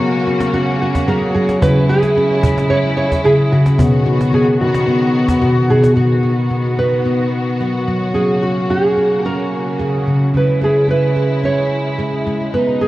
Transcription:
Already playing: string section C#3 A#3 F#4, handpan F#3, nylon-string guitar A#4
0.00 handpan B3
0.27 handpan F#4
0.40 cajon slap
0.54 handpan C#4, nylon-string guitar F#4
0.81 nylon-string guitar F#4
0.95 cajon bass, cajon slap
1.08 handpan F#3 G#4, nylon-string guitar A#4
1.34 handpan F#3, nylon-string guitar G#4
1.49 cajon slap
1.62 handpan C#3 C#4, string section C#3 G#3 E4, nylon-string guitar B4, cajon bass, cajon slap
1.89 nylon-string guitar G#4, handpan G#4
2.03 cajon slap
2.17 handpan C#4
2.43 handpan G#4, cajon bass
2.58 cajon slap
2.70 handpan C#4, nylon-string guitar C#5
2.97 nylon-string guitar C#5
3.12 cajon bass, cajon slap
3.24 handpan C#3 G#4, nylon-string guitar G#4
3.52 handpan C#3, nylon-string guitar F#4
3.66 cajon slap
3.78 handpan B2 B3, string section D#3 B3 F#4, cajon bass
4.06 handpan F#4
4.21 cajon slap
4.33 handpan B3, nylon-string guitar G#4
4.60 handpan F#4, nylon-string guitar F#4, cajon slap
4.74 cajon slap
4.87 handpan B3
5.28 cajon bass, cajon slap
5.42 handpan B2 F#4
5.70 handpan B2, nylon-string guitar G#4
5.84 cajon slap
5.96 handpan B2 B3, string section D#3 B3 F#4, nylon-string guitar F#4
6.23 handpan F#4
6.51 handpan B3
6.79 handpan F#4, nylon-string guitar B4
7.05 handpan B3
7.61 handpan F#3 F#4
7.88 handpan F#3
8.14 string section C#3 A#3, handpan F#3 C#4, nylon-string guitar G#4
8.42 nylon-string guitar F#4, handpan F#4
8.70 handpan C#4, nylon-string guitar G#4
8.97 handpan F#4
9.25 handpan C#4, nylon-string guitar A#4
9.79 handpan C#3 G#4
10.07 handpan C#3
10.34 handpan C#3 C#4, string section G#3 E4, nylon-string guitar B4
10.61 handpan G#4, nylon-string guitar G#4
10.88 handpan C#4, nylon-string guitar B4
11.16 handpan G#4
11.44 handpan C#4, nylon-string guitar C#5
11.98 handpan G#3 G#4
12.27 handpan G#3
12.54 string section B2 D#4, handpan G#3 B3, nylon-string guitar B4
12.81 nylon-string guitar G#4, handpan G#4

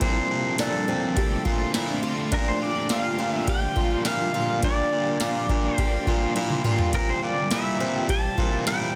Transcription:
0.00 overdriven electric guitar A#2 F3, baritone saxophone A#2, ambient pad D3 A3 C4 F4, twelve-string acoustic guitar C4, pedal steel guitar C5, kick, ride
0.04 overdriven electric guitar C4 D4 A4
0.30 baritone saxophone A#2
0.58 baritone saxophone A#2, twelve-string acoustic guitar D4, pedal steel guitar A4, snare, ride, tambourine
0.88 baritone saxophone A#2, twelve-string acoustic guitar C4
1.16 overdriven electric guitar A#2 F3 C4 D4 A4, twelve-string acoustic guitar G4, kick, ride
1.45 baritone saxophone A#2, twelve-string acoustic guitar F4, kick
1.74 baritone saxophone A#2, twelve-string acoustic guitar E4, snare, ride, tambourine
2.02 overdriven electric guitar D4 A4, twelve-string acoustic guitar F4
2.07 overdriven electric guitar C4
2.31 overdriven electric guitar A#2 F3 A#3 D4, baritone saxophone A#2, ambient pad G3 A#3, twelve-string acoustic guitar D4, pedal steel guitar A#4, kick, ride
2.35 overdriven electric guitar G4
2.48 pedal steel guitar C5
2.60 baritone saxophone A#2, pedal steel guitar D5
2.89 baritone saxophone A#2, overdriven electric guitar F3 A#3, twelve-string acoustic guitar F4, pedal steel guitar F5, snare, ride, tambourine
2.93 overdriven electric guitar D4 G4
3.18 baritone saxophone A#2, twelve-string acoustic guitar D4
3.33 pedal steel guitar E5
3.45 overdriven electric guitar A#2 F3, twelve-string acoustic guitar G4, kick, ride
3.49 overdriven electric guitar A#3 D4, pedal steel guitar G5
3.54 overdriven electric guitar G4
3.76 baritone saxophone A#2, twelve-string acoustic guitar F4, kick
4.05 baritone saxophone A#2, twelve-string acoustic guitar E4, pedal steel guitar F5, snare, ride, tambourine
4.34 baritone saxophone A#2, twelve-string acoustic guitar F4
4.60 overdriven electric guitar A#2 F3, baritone saxophone A#2, ambient pad D3 G3 F4, twelve-string acoustic guitar D4, kick, ride
4.64 overdriven electric guitar A#3 D4, pedal steel guitar D5
4.69 overdriven electric guitar G4
4.92 baritone saxophone A#2
5.20 baritone saxophone A#2, twelve-string acoustic guitar F4, snare, ride, tambourine
5.49 baritone saxophone A#2, twelve-string acoustic guitar D4, kick
5.75 overdriven electric guitar A#2 F3, twelve-string acoustic guitar G4, pedal steel guitar C5, kick, ride
5.79 overdriven electric guitar A#3 D4 G4
6.07 baritone saxophone A#2, twelve-string acoustic guitar F4, kick
6.35 baritone saxophone A#2, twelve-string acoustic guitar E4, high tom, ride
6.50 mid tom
6.63 baritone saxophone A#2, overdriven electric guitar D4 G4, twelve-string acoustic guitar F4, mid tom
6.69 overdriven electric guitar A#3
6.79 floor tom
6.92 overdriven electric guitar A#2 E3 A#3 C4, baritone saxophone A#2, ambient pad C3 G3 A#3 E4, twelve-string acoustic guitar C4, pedal steel guitar A#4, kick, ride
6.96 overdriven electric guitar G4
7.10 pedal steel guitar C5
7.22 baritone saxophone A#2, pedal steel guitar D5
7.49 baritone saxophone A#2, overdriven electric guitar E3 A#3, twelve-string acoustic guitar E4, pedal steel guitar E5, snare, ride, tambourine
7.53 overdriven electric guitar C4 G4
7.80 baritone saxophone A#2, twelve-string acoustic guitar C4
8.06 overdriven electric guitar A#2 E3, twelve-string acoustic guitar G4, kick, ride
8.10 overdriven electric guitar A#3 C4, pedal steel guitar A5
8.15 overdriven electric guitar G4
8.37 baritone saxophone A#2, twelve-string acoustic guitar F4, kick
8.67 baritone saxophone A#2, twelve-string acoustic guitar E4, pedal steel guitar G5, snare, ride, tambourine

